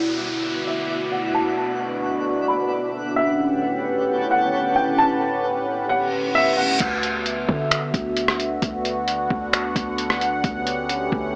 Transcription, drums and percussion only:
6.80 kick loud
6.80 closed hi-hat medium
6.80 crash loud
7.03 closed hi-hat medium
7.26 closed hi-hat medium
7.49 kick medium
7.71 finger snap loud
7.71 closed hi-hat medium
7.94 kick loud
7.94 closed hi-hat medium
8.17 closed hi-hat medium
8.28 cross-stick medium
8.40 closed hi-hat medium
8.62 kick loud
8.62 closed hi-hat medium
8.85 closed hi-hat medium
9.08 closed hi-hat medium
9.30 kick medium
9.53 finger snap loud
9.53 closed hi-hat medium
9.76 kick loud
9.76 closed hi-hat medium
9.98 closed hi-hat medium
10.10 cross-stick medium
10.21 closed hi-hat medium
10.44 kick loud
10.44 closed hi-hat medium
10.67 closed hi-hat medium
10.89 closed hi-hat medium
11.12 kick medium

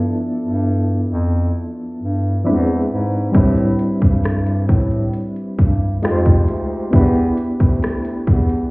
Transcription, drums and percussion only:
3.35 kick loud
3.35 closed hi-hat medium
3.57 closed hi-hat soft
3.79 closed hi-hat medium
4.02 kick medium
4.02 closed hi-hat soft
4.24 cross-stick medium
4.24 closed hi-hat medium
4.47 closed hi-hat medium
4.69 kick medium
4.69 closed hi-hat soft
4.91 closed hi-hat soft
5.13 closed hi-hat medium
5.36 closed hi-hat soft
5.59 kick medium
5.59 closed hi-hat medium
6.03 cross-stick loud
6.03 closed hi-hat medium
6.26 kick medium
6.26 closed hi-hat soft
6.48 closed hi-hat medium
6.93 kick loud
6.93 closed hi-hat medium
7.15 closed hi-hat soft
7.37 closed hi-hat medium
7.60 kick medium
7.60 closed hi-hat soft
7.83 cross-stick medium
7.83 closed hi-hat medium
8.05 closed hi-hat medium
8.27 kick medium
8.27 closed hi-hat soft
8.49 closed hi-hat soft

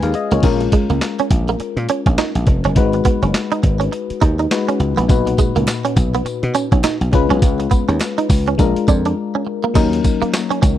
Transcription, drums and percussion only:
0.03 closed hi-hat medium
0.14 closed hi-hat medium
0.31 closed hi-hat medium
0.43 kick loud
0.43 closed hi-hat medium
0.43 crash loud
0.61 closed hi-hat medium
0.72 kick medium
0.72 closed hi-hat medium
0.90 closed hi-hat soft
1.01 snare loud
1.01 clap medium
1.01 closed hi-hat medium
1.19 closed hi-hat medium
1.31 kick medium
1.31 closed hi-hat medium
1.48 closed hi-hat soft
1.60 closed hi-hat medium
1.77 closed hi-hat soft
1.89 closed hi-hat medium
2.06 kick medium
2.06 closed hi-hat medium
2.18 snare loud
2.18 clap medium
2.18 closed hi-hat medium
2.35 closed hi-hat medium
2.47 kick loud
2.47 closed hi-hat medium
2.64 closed hi-hat medium
2.76 kick loud
2.76 closed hi-hat medium
2.93 closed hi-hat medium
3.05 kick medium
3.05 closed hi-hat medium
3.23 closed hi-hat medium
3.34 snare loud
3.34 clap medium
3.34 closed hi-hat medium
3.52 closed hi-hat medium
3.63 kick medium
3.63 closed hi-hat medium
3.81 closed hi-hat soft
3.93 closed hi-hat medium
4.10 closed hi-hat medium
4.22 kick loud
4.22 closed hi-hat medium
4.39 closed hi-hat medium
4.51 snare loud
4.51 clap medium
4.51 closed hi-hat medium
4.69 closed hi-hat medium
4.80 closed hi-hat medium
4.98 closed hi-hat medium
5.09 kick loud
5.09 closed hi-hat medium
5.09 tambourine medium
5.27 closed hi-hat medium
5.38 kick medium
5.38 closed hi-hat medium
5.38 tambourine medium
5.56 closed hi-hat soft
5.67 snare loud
5.67 clap medium
5.67 closed hi-hat medium
5.67 tambourine loud
5.85 closed hi-hat medium
5.96 kick medium
5.96 closed hi-hat medium
5.96 tambourine medium
6.14 closed hi-hat soft
6.26 closed hi-hat medium
6.26 tambourine medium
6.43 closed hi-hat medium
6.54 closed hi-hat medium
6.54 tambourine medium
6.72 kick loud
6.72 closed hi-hat medium
6.84 snare loud
6.84 clap medium
6.84 closed hi-hat medium
6.84 tambourine medium
7.01 closed hi-hat medium
7.13 kick loud
7.13 closed hi-hat medium
7.31 closed hi-hat medium
7.42 kick loud
7.42 closed hi-hat medium
7.42 tambourine medium
7.60 closed hi-hat medium
7.71 kick medium
7.71 closed hi-hat medium
7.71 tambourine medium
7.89 closed hi-hat soft
8.00 snare loud
8.00 clap medium
8.00 closed hi-hat medium
8.00 tambourine medium
8.02 clap medium
8.18 closed hi-hat medium
8.30 kick loud
8.30 open hi-hat medium
8.30 tambourine medium
8.47 closed hi-hat soft
8.59 kick loud
8.59 closed hi-hat medium
8.59 tambourine medium
8.76 closed hi-hat medium
8.88 kick loud
8.88 closed hi-hat medium
8.88 tambourine medium
9.05 closed hi-hat medium
9.75 kick loud
9.75 closed hi-hat medium
9.75 crash loud
9.75 tambourine medium
9.93 closed hi-hat medium
10.04 kick medium
10.04 closed hi-hat medium
10.04 tambourine medium
10.22 closed hi-hat soft
10.34 snare loud
10.34 clap medium
10.34 closed hi-hat medium
10.34 tambourine medium
10.51 closed hi-hat medium
10.63 kick loud
10.63 closed hi-hat medium
10.63 tambourine medium

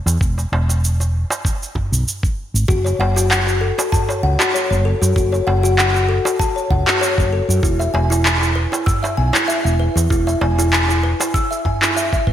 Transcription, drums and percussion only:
0.06 darbuka ka soft
0.06 cabasa medium
0.21 kick loud
0.21 cabasa medium
0.38 darbuka ka soft
0.38 cabasa soft
0.53 darbuka tek medium
0.69 darbuka ka soft
0.69 cabasa medium
0.84 cabasa medium
1.00 darbuka ka soft
1.00 cabasa soft
1.30 darbuka ka soft
1.30 darbuka tek medium
1.30 cabasa medium
1.45 kick medium
1.45 cabasa soft
1.63 cabasa soft
1.75 kick medium
1.75 darbuka dum medium
1.93 cabasa medium
2.08 cabasa medium
2.23 kick loud
2.23 cabasa soft
2.55 cabasa medium
2.69 kick loud
2.69 cabasa soft
2.86 darbuka ka soft
2.86 cabasa soft
3.01 darbuka tek medium
3.16 darbuka ka soft
3.16 darbuka tek soft
3.16 cabasa medium
3.31 clap medium
3.31 cabasa soft
3.47 darbuka ka soft
3.47 cabasa soft
3.79 darbuka ka soft
3.79 darbuka tek medium
3.79 cabasa medium
3.92 kick medium
3.92 darbuka dum medium
3.92 cabasa soft
4.09 darbuka tek medium
4.09 cabasa soft
4.39 clap medium
4.39 darbuka tek medium
4.39 cabasa medium
4.55 cabasa medium
4.72 cabasa soft
5.02 darbuka ka soft
5.02 cabasa medium
5.16 kick loud
5.16 cabasa soft
5.33 darbuka ka soft
5.33 cabasa soft
5.47 darbuka tek medium
5.64 darbuka ka soft
5.64 cabasa medium
5.79 clap medium
5.79 cabasa soft
5.95 darbuka ka soft
5.95 cabasa soft
6.25 darbuka ka soft
6.25 darbuka tek medium
6.25 cabasa medium
6.40 kick medium
6.40 cabasa medium
6.58 cabasa soft
6.71 kick medium
6.71 darbuka dum medium
6.88 clap medium
6.88 cabasa medium
7.03 cabasa medium
7.18 kick medium
7.18 cabasa soft
7.50 cabasa medium
7.63 kick loud
7.63 cabasa soft
7.80 darbuka ka soft
7.80 cabasa soft
7.95 darbuka tek medium
8.12 darbuka ka soft
8.12 darbuka tek soft
8.12 cabasa medium
8.26 clap medium
8.26 cabasa soft
8.41 darbuka ka soft
8.41 cabasa soft
8.72 darbuka ka soft
8.72 darbuka tek medium
8.72 cabasa medium
8.87 kick medium
8.87 darbuka dum medium
8.87 cabasa soft
9.04 darbuka tek medium
9.04 cabasa soft
9.33 clap medium
9.33 darbuka tek medium
9.33 cabasa medium
9.50 cabasa soft
9.67 cabasa soft
9.97 darbuka ka soft
9.97 cabasa medium
10.10 kick loud
10.10 cabasa soft
10.27 darbuka ka medium
10.27 cabasa soft
10.41 darbuka tek medium
10.58 darbuka ka soft
10.58 darbuka tek soft
10.58 cabasa medium
10.73 clap medium
10.73 cabasa medium
10.89 darbuka ka soft
10.89 cabasa soft
11.21 darbuka ka soft
11.21 darbuka tek medium
11.21 cabasa medium
11.34 kick medium
11.34 cabasa soft
11.52 cabasa soft
11.65 kick medium
11.65 darbuka dum medium
11.82 clap medium
11.82 cabasa medium
11.97 cabasa soft
12.13 kick medium
12.13 cabasa soft
12.27 kick medium

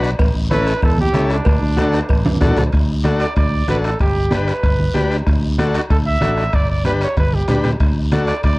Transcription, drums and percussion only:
0.03 bombo rim medium
0.03 short guiro medium
0.19 bombo low medium
0.19 bombo rim medium
0.19 cowbell loud
0.19 long guiro medium
0.51 bombo rim medium
0.51 high conga medium
0.51 short guiro medium
0.67 bombo rim medium
0.67 short guiro medium
0.82 bombo low medium
0.82 bombo rim medium
0.82 cowbell medium
0.82 long guiro medium
0.98 high conga medium
1.14 bombo rim medium
1.14 high conga medium
1.14 short guiro medium
1.30 bombo rim medium
1.30 short guiro medium
1.45 bombo low medium
1.45 bombo rim medium
1.45 cowbell loud
1.45 long guiro medium
1.77 bombo rim medium
1.77 high conga medium
1.77 short guiro medium
1.93 bombo rim medium
1.93 high timbale medium
1.93 short guiro medium
2.09 bombo low medium
2.09 bombo rim medium
2.09 cowbell medium
2.09 long guiro medium
2.25 high conga loud
2.25 high timbale medium
2.36 high conga medium
2.41 bombo low medium
2.41 bombo rim medium
2.41 low timbale medium
2.41 short guiro medium
2.46 low conga medium
2.57 bombo rim medium
2.57 low conga medium
2.57 low timbale medium
2.57 short guiro medium
2.72 bombo low medium
2.72 bombo rim medium
2.72 high timbale medium
2.72 long guiro medium
3.04 bombo rim medium
3.04 high conga medium
3.04 high timbale medium
3.04 short guiro medium
3.20 bombo rim medium
3.20 high timbale medium
3.20 short guiro medium
3.36 bombo low medium
3.36 bombo rim medium
3.36 high timbale medium
3.36 long guiro medium
3.68 bombo rim medium
3.68 high conga medium
3.68 high timbale medium
3.68 low timbale medium
3.68 short guiro medium
3.84 bombo rim medium
3.84 high timbale medium
3.84 short guiro medium
4.00 bombo low medium
4.00 bombo rim medium
4.00 high timbale medium
4.00 long guiro medium
4.31 bombo rim medium
4.31 high conga medium
4.31 high timbale medium
4.31 short guiro medium
4.48 bombo rim medium
4.48 high timbale medium
4.48 short guiro medium
4.63 bombo low medium
4.63 bombo rim medium
4.63 high timbale medium
4.63 long guiro medium
4.79 high conga medium
4.95 bombo rim medium
4.95 high conga medium
4.95 high timbale medium
4.95 low timbale medium
4.95 short guiro medium
5.11 bombo rim medium
5.11 high timbale medium
5.11 short guiro medium
5.27 bombo low medium
5.27 bombo rim medium
5.27 high timbale medium
5.27 long guiro medium
5.58 bombo rim medium
5.58 high conga medium
5.58 high timbale medium
5.58 short guiro medium
5.74 bombo rim medium
5.74 high timbale medium
5.74 short guiro medium
5.90 bombo low medium
5.90 bombo rim medium
5.90 high timbale medium
5.90 long guiro medium
6.21 bombo rim medium
6.21 high conga medium
6.21 high timbale medium
6.21 short guiro medium
6.37 bombo rim medium
6.37 high timbale medium
6.37 short guiro medium
6.53 bombo low medium
6.53 bombo rim medium
6.53 high timbale medium
6.53 long guiro medium
6.85 bombo rim medium
6.85 high conga medium
6.85 high timbale medium
6.85 short guiro medium
7.01 bombo rim medium
7.01 high timbale medium
7.01 short guiro medium
7.17 bombo low medium
7.17 bombo rim medium
7.17 high conga medium
7.17 high timbale medium
7.17 long guiro medium
7.33 high conga medium
7.48 bombo rim medium
7.48 low conga medium
7.48 high timbale medium
7.48 low timbale medium
7.48 short guiro medium
7.64 bombo rim medium
7.64 low conga medium
7.64 high timbale medium
7.64 short guiro medium
7.80 bombo low medium
7.80 bombo rim medium
7.80 high timbale medium
7.80 long guiro medium
8.12 bombo rim medium
8.12 high conga medium
8.12 high timbale medium
8.12 short guiro medium
8.27 bombo rim medium
8.27 high timbale medium
8.27 short guiro medium
8.43 bombo low medium
8.43 bombo rim medium
8.43 high timbale medium
8.43 long guiro medium

